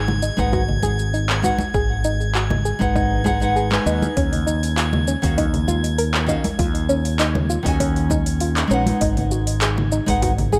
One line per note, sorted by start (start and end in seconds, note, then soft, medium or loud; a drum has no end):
0.00 0.29 G#1 medium
0.00 0.33 G#3 medium
0.00 0.34 D#4 medium
0.00 0.21 G#4 medium
0.00 0.35 B4 medium
0.00 0.36 F#5 medium
0.00 10.59 G#6 medium
0.08 high conga medium
0.08 low conga medium
0.22 0.51 D#4 medium
0.22 shaker medium
0.37 1.50 G#1 loud
0.37 0.60 G#3 medium
0.37 0.60 D#4 medium
0.37 0.61 B4 medium
0.37 0.61 F#5 medium
0.37 kick loud
0.37 shaker soft
0.53 0.70 F#4 medium
0.53 kick loud
0.53 shaker soft
0.69 low conga medium
0.83 1.11 G#4 loud
0.83 high conga medium
0.83 shaker medium
0.99 shaker soft
1.14 1.41 D#4 medium
1.14 shaker soft
1.29 clap medium
1.42 1.58 G#3 medium
1.42 1.58 D#4 medium
1.42 1.71 F#4 medium
1.42 1.59 B4 medium
1.42 1.59 F#5 medium
1.42 kick medium
1.42 shaker medium
1.59 high conga medium
1.59 shaker soft
1.74 2.72 G#1 medium
1.74 2.03 G#4 medium
1.74 kick loud
1.74 shaker soft
2.04 2.22 D#4 medium
2.04 shaker medium
2.21 shaker soft
2.35 2.64 F#4 medium
2.35 clap medium
2.35 shaker soft
2.50 high conga medium
2.50 low conga medium
2.65 2.94 G#4 medium
2.65 shaker medium
2.79 3.78 G#1 medium
2.79 3.22 G#3 medium
2.79 3.22 D#4 medium
2.79 3.23 B4 medium
2.79 3.23 F#5 medium
2.79 kick loud
2.79 shaker soft
2.95 3.23 D#4 medium
2.95 kick loud
2.95 shaker soft
3.24 3.37 G#3 medium
3.24 3.37 D#4 medium
3.24 3.43 G#4 medium
3.24 3.38 B4 medium
3.24 3.38 F#5 medium
3.24 kick loud
3.24 high conga medium
3.24 shaker medium
3.40 3.67 G#3 medium
3.40 3.68 D#4 medium
3.40 3.68 B4 medium
3.40 3.69 F#5 medium
3.40 shaker soft
3.56 3.85 G#4 medium
3.56 shaker soft
3.70 4.14 G#3 medium
3.70 4.15 D#4 medium
3.70 4.15 B4 medium
3.70 4.16 G#5 medium
3.70 clap medium
3.86 4.06 D#2 medium
3.86 4.15 D#4 loud
3.86 shaker medium
4.02 high conga medium
4.02 shaker soft
4.17 5.14 D#2 medium
4.17 4.44 C#4 medium
4.17 kick loud
4.17 open hi-hat soft
4.17 shaker soft
4.33 open hi-hat soft
4.33 low conga medium
4.47 4.74 D#4 medium
4.47 shaker medium
4.63 open hi-hat soft
4.63 shaker soft
4.77 5.06 F4 medium
4.77 clap medium
4.77 open hi-hat soft
4.77 shaker soft
4.93 high conga medium
4.93 low conga medium
5.08 5.36 C#4 medium
5.08 shaker medium
5.22 6.35 D#2 medium
5.22 5.45 D#3 medium
5.22 5.45 C#4 medium
5.22 5.46 F#4 medium
5.22 5.46 F5 medium
5.22 kick medium
5.22 open hi-hat soft
5.22 shaker soft
5.38 5.55 D#4 medium
5.38 kick loud
5.38 open hi-hat medium
5.38 shaker soft
5.54 open hi-hat soft
5.54 low conga medium
5.68 5.95 F4 loud
5.68 high conga medium
5.68 shaker medium
5.84 open hi-hat soft
5.84 shaker soft
5.98 6.15 A#4 medium
5.98 open hi-hat soft
5.98 shaker soft
6.14 clap medium
6.26 6.42 D#3 medium
6.26 6.43 C#4 medium
6.26 6.56 D#4 medium
6.26 6.43 F#4 medium
6.26 6.44 F5 medium
6.26 kick medium
6.26 shaker medium
6.44 open hi-hat soft
6.44 high conga loud
6.44 shaker soft
6.59 7.57 D#2 medium
6.59 6.88 F4 medium
6.59 kick loud
6.59 open hi-hat soft
6.59 shaker soft
6.75 open hi-hat soft
6.89 7.06 C#4 loud
6.89 shaker medium
7.05 open hi-hat soft
7.05 shaker soft
7.19 7.48 D#4 medium
7.19 clap medium
7.19 open hi-hat soft
7.19 shaker soft
7.35 high conga medium
7.35 low conga medium
7.50 7.79 F4 medium
7.50 shaker medium
7.63 8.63 D#2 medium
7.63 8.66 D#3 medium
7.63 8.67 C#4 medium
7.63 8.68 F#4 medium
7.63 kick loud
7.63 open hi-hat soft
7.63 shaker soft
7.68 8.69 G#5 medium
7.80 8.08 C#4 medium
7.80 kick loud
7.80 open hi-hat medium
7.80 shaker soft
7.96 open hi-hat soft
8.10 8.28 D#4 medium
8.10 kick loud
8.10 high conga medium
8.10 shaker medium
8.26 open hi-hat soft
8.26 shaker soft
8.40 8.68 F4 medium
8.40 open hi-hat medium
8.40 shaker soft
8.57 clap medium
8.57 open hi-hat soft
8.67 8.91 A#1 medium
8.67 10.03 G#3 medium
8.67 8.98 C#4 medium
8.67 10.04 D#4 medium
8.67 10.05 B4 medium
8.67 shaker medium
8.73 10.05 F#5 medium
8.87 open hi-hat soft
8.87 high conga medium
8.87 shaker soft
9.01 9.99 G#1 medium
9.01 9.29 D#4 medium
9.01 kick loud
9.01 open hi-hat soft
9.01 shaker soft
9.17 open hi-hat soft
9.17 low conga medium
9.31 9.59 F#4 medium
9.31 shaker medium
9.47 open hi-hat soft
9.47 shaker soft
9.61 9.91 G#4 medium
9.61 clap medium
9.61 open hi-hat medium
9.61 shaker soft
9.78 high conga medium
9.78 low conga medium
9.92 10.21 D#4 medium
9.92 shaker medium
10.06 10.59 G#1 loud
10.06 10.29 G#3 medium
10.06 10.30 D#4 medium
10.06 10.30 B4 medium
10.06 10.31 F#5 medium
10.06 kick loud
10.06 open hi-hat soft
10.06 shaker soft
10.22 10.39 F#4 medium
10.22 kick loud
10.22 open hi-hat medium
10.22 shaker soft
10.38 open hi-hat soft
10.38 low conga medium
10.52 10.59 G#4 loud
10.52 high conga medium
10.52 shaker medium